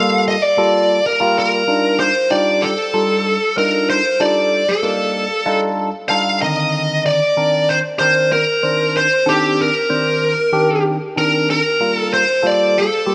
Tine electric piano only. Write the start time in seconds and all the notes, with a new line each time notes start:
Already playing: G3 A#3 F4 A4
0.57 G3 A#3 F4 A4
1.20 G3 A#3 F4 A#4
1.68 G3 D4 D#4 F4 A#4
2.30 G3 D4 D#4 F4 G4
2.94 G3 D4 D#4 F4 A4
3.56 G3 D4 D#4 F4 A#4
4.20 G3 D4 D#4 F4 A4
4.83 G3 A#3 D4 D#4 F4
5.46 G3 D4 D#4 F4 A4
6.09 G3 D4 D#4 F4 A4
6.42 D3 D#3 C4 A#4
7.37 D#3 C4 D4 A#4
8.00 D#3 C4 D4 A#4
8.63 D#3 C4 D4 C5
9.26 D#3 C4 D4 A4
9.89 D#3 C4 D4 C5
10.52 D#3 C4 D4 G4
11.16 D#3 C4 D4 A#4
11.80 G3 A#3 F4 A#4
12.43 G3 A#3 F4 A4
13.06 G3 A#3 F4 G4